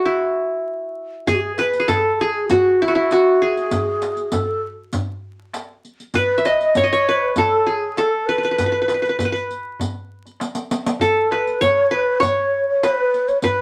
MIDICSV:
0, 0, Header, 1, 5, 480
1, 0, Start_track
1, 0, Tempo, 608519
1, 1003, Time_signature, 4, 2, 24, 8
1, 10740, End_track
2, 0, Start_track
2, 0, Title_t, "Qanun"
2, 0, Program_c, 0, 107
2, 0, Note_on_c, 0, 66, 69
2, 0, Note_on_c, 0, 68, 76
2, 43, Note_on_c, 0, 64, 70
2, 525, Note_off_c, 0, 68, 0
2, 901, Note_off_c, 0, 66, 0
2, 1005, Note_on_c, 0, 68, 93
2, 1141, Note_off_c, 0, 64, 0
2, 1252, Note_on_c, 0, 71, 80
2, 1414, Note_off_c, 0, 68, 0
2, 1417, Note_on_c, 0, 68, 63
2, 1483, Note_on_c, 0, 69, 84
2, 1530, Note_off_c, 0, 68, 0
2, 1743, Note_on_c, 0, 68, 94
2, 1791, Note_off_c, 0, 69, 0
2, 1977, Note_on_c, 0, 66, 88
2, 2114, Note_off_c, 0, 71, 0
2, 2223, Note_on_c, 0, 64, 76
2, 2267, Note_off_c, 0, 66, 0
2, 2270, Note_on_c, 0, 66, 66
2, 2325, Note_off_c, 0, 64, 0
2, 2328, Note_on_c, 0, 64, 72
2, 2459, Note_off_c, 0, 66, 0
2, 2462, Note_on_c, 0, 66, 81
2, 2693, Note_off_c, 0, 68, 0
2, 2696, Note_on_c, 0, 68, 75
2, 3427, Note_off_c, 0, 64, 0
2, 3488, Note_off_c, 0, 66, 0
2, 3652, Note_off_c, 0, 68, 0
2, 4854, Note_on_c, 0, 71, 89
2, 5031, Note_on_c, 0, 76, 74
2, 5091, Note_on_c, 0, 75, 82
2, 5138, Note_off_c, 0, 76, 0
2, 5341, Note_on_c, 0, 73, 84
2, 5389, Note_off_c, 0, 75, 0
2, 5392, Note_on_c, 0, 75, 77
2, 5460, Note_off_c, 0, 73, 0
2, 5463, Note_on_c, 0, 73, 99
2, 5586, Note_off_c, 0, 71, 0
2, 5589, Note_on_c, 0, 71, 82
2, 5821, Note_on_c, 0, 69, 89
2, 6046, Note_on_c, 0, 68, 68
2, 6094, Note_off_c, 0, 69, 0
2, 6142, Note_off_c, 0, 75, 0
2, 6267, Note_off_c, 0, 73, 0
2, 6295, Note_on_c, 0, 69, 76
2, 6342, Note_off_c, 0, 68, 0
2, 6451, Note_off_c, 0, 71, 0
2, 6537, Note_on_c, 0, 71, 72
2, 6607, Note_off_c, 0, 71, 0
2, 6610, Note_on_c, 0, 71, 47
2, 6658, Note_off_c, 0, 71, 0
2, 6661, Note_on_c, 0, 71, 55
2, 6711, Note_off_c, 0, 71, 0
2, 6714, Note_on_c, 0, 71, 49
2, 6767, Note_off_c, 0, 71, 0
2, 6770, Note_on_c, 0, 71, 51
2, 6828, Note_off_c, 0, 71, 0
2, 6831, Note_on_c, 0, 71, 48
2, 6874, Note_off_c, 0, 71, 0
2, 6878, Note_on_c, 0, 71, 54
2, 6951, Note_off_c, 0, 71, 0
2, 6954, Note_on_c, 0, 71, 47
2, 7002, Note_off_c, 0, 71, 0
2, 7005, Note_on_c, 0, 71, 52
2, 7051, Note_off_c, 0, 71, 0
2, 7054, Note_on_c, 0, 71, 39
2, 7112, Note_off_c, 0, 71, 0
2, 7115, Note_on_c, 0, 71, 51
2, 7168, Note_off_c, 0, 71, 0
2, 7171, Note_on_c, 0, 71, 51
2, 7219, Note_off_c, 0, 69, 0
2, 7245, Note_off_c, 0, 71, 0
2, 7248, Note_on_c, 0, 71, 54
2, 7294, Note_off_c, 0, 71, 0
2, 7297, Note_on_c, 0, 71, 51
2, 7351, Note_off_c, 0, 71, 0
2, 7354, Note_on_c, 0, 71, 63
2, 8216, Note_off_c, 0, 71, 0
2, 8685, Note_on_c, 0, 69, 88
2, 8928, Note_on_c, 0, 71, 71
2, 9158, Note_on_c, 0, 73, 96
2, 9391, Note_off_c, 0, 71, 0
2, 9394, Note_on_c, 0, 71, 86
2, 9609, Note_off_c, 0, 69, 0
2, 9620, Note_off_c, 0, 73, 0
2, 9623, Note_on_c, 0, 73, 104
2, 10120, Note_off_c, 0, 71, 0
2, 10124, Note_on_c, 0, 71, 76
2, 10427, Note_off_c, 0, 73, 0
2, 10596, Note_off_c, 0, 71, 0
2, 10599, Note_on_c, 0, 71, 94
2, 10740, Note_off_c, 0, 71, 0
2, 10740, End_track
3, 0, Start_track
3, 0, Title_t, "Ney"
3, 0, Program_c, 1, 77
3, 1001, Note_on_c, 1, 68, 81
3, 1057, Note_on_c, 1, 66, 61
3, 1069, Note_off_c, 1, 68, 0
3, 1104, Note_on_c, 1, 68, 75
3, 1116, Note_off_c, 1, 66, 0
3, 1231, Note_off_c, 1, 68, 0
3, 1236, Note_on_c, 1, 71, 79
3, 1493, Note_on_c, 1, 69, 71
3, 1505, Note_off_c, 1, 71, 0
3, 1540, Note_on_c, 1, 68, 59
3, 1552, Note_off_c, 1, 69, 0
3, 1585, Note_on_c, 1, 69, 77
3, 1597, Note_off_c, 1, 68, 0
3, 1703, Note_off_c, 1, 69, 0
3, 1708, Note_on_c, 1, 68, 83
3, 1939, Note_off_c, 1, 68, 0
3, 1958, Note_on_c, 1, 66, 64
3, 2217, Note_on_c, 1, 64, 69
3, 2229, Note_off_c, 1, 66, 0
3, 2450, Note_on_c, 1, 66, 78
3, 2462, Note_off_c, 1, 64, 0
3, 2693, Note_on_c, 1, 68, 84
3, 2705, Note_off_c, 1, 66, 0
3, 3409, Note_on_c, 1, 69, 64
3, 3420, Note_off_c, 1, 68, 0
3, 3647, Note_off_c, 1, 69, 0
3, 4852, Note_on_c, 1, 71, 84
3, 5097, Note_on_c, 1, 75, 79
3, 5109, Note_off_c, 1, 71, 0
3, 5328, Note_on_c, 1, 73, 76
3, 5340, Note_off_c, 1, 75, 0
3, 5438, Note_off_c, 1, 73, 0
3, 5445, Note_on_c, 1, 73, 80
3, 5587, Note_on_c, 1, 71, 79
3, 5599, Note_off_c, 1, 73, 0
3, 5805, Note_off_c, 1, 71, 0
3, 5810, Note_on_c, 1, 69, 77
3, 6054, Note_on_c, 1, 68, 67
3, 6066, Note_off_c, 1, 69, 0
3, 6282, Note_on_c, 1, 69, 77
3, 6293, Note_off_c, 1, 68, 0
3, 6517, Note_on_c, 1, 71, 79
3, 6529, Note_off_c, 1, 69, 0
3, 7481, Note_off_c, 1, 71, 0
3, 8674, Note_on_c, 1, 69, 75
3, 8920, Note_on_c, 1, 71, 72
3, 8932, Note_off_c, 1, 69, 0
3, 9177, Note_on_c, 1, 73, 82
3, 9189, Note_off_c, 1, 71, 0
3, 9414, Note_on_c, 1, 71, 81
3, 9426, Note_off_c, 1, 73, 0
3, 9640, Note_off_c, 1, 71, 0
3, 9644, Note_on_c, 1, 73, 82
3, 9978, Note_off_c, 1, 73, 0
3, 10012, Note_on_c, 1, 73, 78
3, 10125, Note_on_c, 1, 71, 81
3, 10137, Note_off_c, 1, 73, 0
3, 10476, Note_on_c, 1, 73, 79
3, 10488, Note_off_c, 1, 71, 0
3, 10578, Note_off_c, 1, 73, 0
3, 10582, Note_on_c, 1, 71, 78
3, 10740, Note_off_c, 1, 71, 0
3, 10740, End_track
4, 0, Start_track
4, 0, Title_t, "Darbuka"
4, 1003, Note_on_c, 9, 64, 84
4, 1082, Note_off_c, 9, 64, 0
4, 1247, Note_on_c, 9, 63, 50
4, 1326, Note_off_c, 9, 63, 0
4, 1364, Note_on_c, 9, 62, 25
4, 1443, Note_off_c, 9, 62, 0
4, 1487, Note_on_c, 9, 64, 87
4, 1566, Note_off_c, 9, 64, 0
4, 1732, Note_on_c, 9, 62, 26
4, 1811, Note_off_c, 9, 62, 0
4, 1974, Note_on_c, 9, 64, 81
4, 2053, Note_off_c, 9, 64, 0
4, 2335, Note_on_c, 9, 62, 26
4, 2414, Note_off_c, 9, 62, 0
4, 2456, Note_on_c, 9, 63, 69
4, 2535, Note_off_c, 9, 63, 0
4, 2936, Note_on_c, 9, 64, 91
4, 3015, Note_off_c, 9, 64, 0
4, 3176, Note_on_c, 9, 63, 58
4, 3255, Note_off_c, 9, 63, 0
4, 3300, Note_on_c, 9, 62, 25
4, 3378, Note_off_c, 9, 62, 0
4, 3416, Note_on_c, 9, 64, 84
4, 3495, Note_off_c, 9, 64, 0
4, 3543, Note_on_c, 9, 62, 30
4, 3622, Note_off_c, 9, 62, 0
4, 3664, Note_on_c, 9, 62, 26
4, 3743, Note_off_c, 9, 62, 0
4, 3893, Note_on_c, 9, 64, 95
4, 3972, Note_off_c, 9, 64, 0
4, 4253, Note_on_c, 9, 62, 26
4, 4332, Note_off_c, 9, 62, 0
4, 4366, Note_on_c, 9, 63, 59
4, 4444, Note_off_c, 9, 63, 0
4, 4844, Note_on_c, 9, 64, 89
4, 4923, Note_off_c, 9, 64, 0
4, 5093, Note_on_c, 9, 63, 57
4, 5172, Note_off_c, 9, 63, 0
4, 5213, Note_on_c, 9, 62, 27
4, 5292, Note_off_c, 9, 62, 0
4, 5331, Note_on_c, 9, 64, 88
4, 5409, Note_off_c, 9, 64, 0
4, 5571, Note_on_c, 9, 62, 27
4, 5650, Note_off_c, 9, 62, 0
4, 5809, Note_on_c, 9, 64, 82
4, 5888, Note_off_c, 9, 64, 0
4, 6178, Note_on_c, 9, 62, 23
4, 6257, Note_off_c, 9, 62, 0
4, 6293, Note_on_c, 9, 63, 61
4, 6372, Note_off_c, 9, 63, 0
4, 6774, Note_on_c, 9, 64, 87
4, 6853, Note_off_c, 9, 64, 0
4, 7011, Note_on_c, 9, 63, 62
4, 7090, Note_off_c, 9, 63, 0
4, 7246, Note_on_c, 9, 64, 76
4, 7325, Note_off_c, 9, 64, 0
4, 7726, Note_on_c, 9, 64, 72
4, 7805, Note_off_c, 9, 64, 0
4, 8089, Note_on_c, 9, 62, 24
4, 8167, Note_off_c, 9, 62, 0
4, 8203, Note_on_c, 9, 63, 65
4, 8282, Note_off_c, 9, 63, 0
4, 8440, Note_on_c, 9, 62, 25
4, 8519, Note_off_c, 9, 62, 0
4, 8565, Note_on_c, 9, 62, 26
4, 8644, Note_off_c, 9, 62, 0
4, 8673, Note_on_c, 9, 64, 73
4, 8752, Note_off_c, 9, 64, 0
4, 8923, Note_on_c, 9, 63, 79
4, 9002, Note_off_c, 9, 63, 0
4, 9165, Note_on_c, 9, 64, 76
4, 9243, Note_off_c, 9, 64, 0
4, 9401, Note_on_c, 9, 62, 24
4, 9480, Note_off_c, 9, 62, 0
4, 9638, Note_on_c, 9, 64, 76
4, 9717, Note_off_c, 9, 64, 0
4, 10001, Note_on_c, 9, 62, 24
4, 10080, Note_off_c, 9, 62, 0
4, 10122, Note_on_c, 9, 63, 72
4, 10201, Note_off_c, 9, 63, 0
4, 10597, Note_on_c, 9, 64, 73
4, 10676, Note_off_c, 9, 64, 0
4, 10740, End_track
5, 0, Start_track
5, 0, Title_t, "Riq"
5, 1008, Note_on_c, 9, 54, 51
5, 1087, Note_off_c, 9, 54, 0
5, 1244, Note_on_c, 9, 54, 43
5, 1323, Note_off_c, 9, 54, 0
5, 1368, Note_on_c, 9, 54, 19
5, 1447, Note_off_c, 9, 54, 0
5, 1485, Note_on_c, 9, 54, 57
5, 1564, Note_off_c, 9, 54, 0
5, 1968, Note_on_c, 9, 54, 62
5, 2047, Note_off_c, 9, 54, 0
5, 2452, Note_on_c, 9, 54, 46
5, 2530, Note_off_c, 9, 54, 0
5, 2818, Note_on_c, 9, 54, 22
5, 2896, Note_off_c, 9, 54, 0
5, 2928, Note_on_c, 9, 54, 66
5, 3007, Note_off_c, 9, 54, 0
5, 3169, Note_on_c, 9, 54, 45
5, 3248, Note_off_c, 9, 54, 0
5, 3288, Note_on_c, 9, 54, 19
5, 3367, Note_off_c, 9, 54, 0
5, 3405, Note_on_c, 9, 54, 66
5, 3484, Note_off_c, 9, 54, 0
5, 3885, Note_on_c, 9, 54, 61
5, 3964, Note_off_c, 9, 54, 0
5, 4369, Note_on_c, 9, 54, 52
5, 4448, Note_off_c, 9, 54, 0
5, 4612, Note_on_c, 9, 54, 17
5, 4691, Note_off_c, 9, 54, 0
5, 4733, Note_on_c, 9, 54, 19
5, 4811, Note_off_c, 9, 54, 0
5, 4841, Note_on_c, 9, 54, 52
5, 4920, Note_off_c, 9, 54, 0
5, 5087, Note_on_c, 9, 54, 43
5, 5166, Note_off_c, 9, 54, 0
5, 5211, Note_on_c, 9, 54, 17
5, 5290, Note_off_c, 9, 54, 0
5, 5325, Note_on_c, 9, 54, 66
5, 5404, Note_off_c, 9, 54, 0
5, 5804, Note_on_c, 9, 54, 58
5, 5883, Note_off_c, 9, 54, 0
5, 6289, Note_on_c, 9, 54, 49
5, 6368, Note_off_c, 9, 54, 0
5, 6651, Note_on_c, 9, 54, 18
5, 6730, Note_off_c, 9, 54, 0
5, 6771, Note_on_c, 9, 54, 55
5, 6850, Note_off_c, 9, 54, 0
5, 7013, Note_on_c, 9, 54, 38
5, 7092, Note_off_c, 9, 54, 0
5, 7141, Note_on_c, 9, 54, 18
5, 7220, Note_off_c, 9, 54, 0
5, 7257, Note_on_c, 9, 54, 54
5, 7336, Note_off_c, 9, 54, 0
5, 7377, Note_on_c, 9, 54, 15
5, 7456, Note_off_c, 9, 54, 0
5, 7498, Note_on_c, 9, 54, 16
5, 7577, Note_off_c, 9, 54, 0
5, 7737, Note_on_c, 9, 54, 57
5, 7815, Note_off_c, 9, 54, 0
5, 8096, Note_on_c, 9, 54, 15
5, 8175, Note_off_c, 9, 54, 0
5, 8212, Note_on_c, 9, 54, 57
5, 8291, Note_off_c, 9, 54, 0
5, 8320, Note_on_c, 9, 54, 58
5, 8399, Note_off_c, 9, 54, 0
5, 8449, Note_on_c, 9, 54, 82
5, 8528, Note_off_c, 9, 54, 0
5, 8569, Note_on_c, 9, 54, 91
5, 8648, Note_off_c, 9, 54, 0
5, 8688, Note_on_c, 9, 54, 54
5, 8766, Note_off_c, 9, 54, 0
5, 9049, Note_on_c, 9, 54, 17
5, 9128, Note_off_c, 9, 54, 0
5, 9163, Note_on_c, 9, 54, 57
5, 9242, Note_off_c, 9, 54, 0
5, 9643, Note_on_c, 9, 54, 57
5, 9722, Note_off_c, 9, 54, 0
5, 10123, Note_on_c, 9, 54, 57
5, 10201, Note_off_c, 9, 54, 0
5, 10365, Note_on_c, 9, 54, 20
5, 10444, Note_off_c, 9, 54, 0
5, 10478, Note_on_c, 9, 54, 17
5, 10557, Note_off_c, 9, 54, 0
5, 10588, Note_on_c, 9, 54, 58
5, 10667, Note_off_c, 9, 54, 0
5, 10740, End_track
0, 0, End_of_file